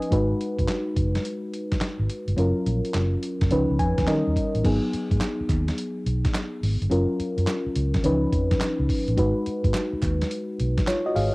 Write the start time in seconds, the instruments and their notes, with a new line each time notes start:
Already playing: fm electric piano F3 C#4 D#4 B4 D#5 G#5
0.02 closed hi-hat
0.11 fingered electric bass G#1, fm electric piano G#3 D#4 F#4 B4, kick, closed hi-hat
0.41 closed hi-hat
0.59 fingered electric bass F#1, kick, closed hi-hat
0.68 snare, clap, closed hi-hat
0.96 fingered electric bass F#1, kick, closed hi-hat
1.15 snare, closed hi-hat
1.25 closed hi-hat
1.54 closed hi-hat
1.72 kick, snare, closed hi-hat
1.81 muted fingered electric bass stroke, snare, clap, closed hi-hat
1.99 fingered electric bass G#1
2.10 closed hi-hat
2.28 fingered electric bass G1, closed hi-hat
2.37 fingered electric bass F#1, fm electric piano F#3 C#4 F4 A#4, closed hi-hat
2.66 fingered electric bass A#1, closed hi-hat
2.85 closed hi-hat
2.94 fingered electric bass F#1, snare, clap, closed hi-hat
3.23 closed hi-hat
3.41 fingered electric bass F#1, kick, snare, closed hi-hat
3.51 fingered electric bass C#2, fm electric piano F3 C#4 D#4 B4, closed hi-hat
3.70 fingered electric bass C#2
3.79 fingered electric bass F2, fm electric piano G#5, kick, closed hi-hat
3.98 fingered electric bass D#2, kick, snare, closed hi-hat
4.07 fingered electric bass D#3, fm electric piano F#3 C#4 D#4 A#4 D#5, snare, clap, closed hi-hat
4.13 fm electric piano G3
4.27 fingered electric bass D#2
4.36 kick, closed hi-hat
4.55 fingered electric bass A1, closed hi-hat
4.64 fingered electric bass G#1, fm electric piano F#3 B3 D#4 G#4, kick, closed hi-hat, crash
4.93 muted fingered electric bass stroke, closed hi-hat
5.11 fingered electric bass G#2, kick, closed hi-hat
5.21 snare, clap, closed hi-hat
5.41 muted fingered electric bass stroke
5.49 fingered electric bass D#2, kick, clap, closed hi-hat
5.68 snare, closed hi-hat
5.78 closed hi-hat
6.06 fingered electric bass B1, closed hi-hat
6.25 kick, snare, closed hi-hat
6.34 snare, clap, closed hi-hat
6.63 fingered electric bass G#1, open hi-hat
6.82 fingered electric bass G1, closed hi-hat
6.90 fingered electric bass F#1, fm electric piano F#3 C#4 F4 A#4, closed hi-hat
7.20 muted fingered electric bass stroke, closed hi-hat
7.38 fingered electric bass F#2, closed hi-hat
7.47 snare, clap, closed hi-hat
7.66 muted fingered electric bass stroke
7.75 fingered electric bass C#2, closed hi-hat
7.94 kick, snare, closed hi-hat
8.03 fingered electric bass C#2, fm electric piano E3 C#4 D#4 B4, closed hi-hat
8.10 fm electric piano F3
8.32 fingered electric bass F2, kick, closed hi-hat
8.51 kick, snare, closed hi-hat
8.61 muted fingered electric bass stroke, snare, clap, closed hi-hat
8.80 fingered electric bass C#2
8.89 kick, open hi-hat
9.08 fingered electric bass A1, closed hi-hat
9.16 fingered electric bass G#1, fm electric piano G#3 D#4 F#4 B4, kick, closed hi-hat
9.46 muted fingered electric bass stroke, closed hi-hat
9.64 fingered electric bass G#2, kick, closed hi-hat
9.74 snare, clap, closed hi-hat
9.93 muted fingered electric bass stroke
10.02 fingered electric bass D#2, kick, clap, closed hi-hat
10.21 snare, closed hi-hat
10.31 closed hi-hat
10.60 fingered electric bass B1, closed hi-hat
10.78 kick, snare, closed hi-hat
10.87 fm electric piano F4 C#5, snare, clap, closed hi-hat
11.06 fm electric piano F#4 D#5
11.16 fingered electric bass G#1, fm electric piano G#4 F5, open hi-hat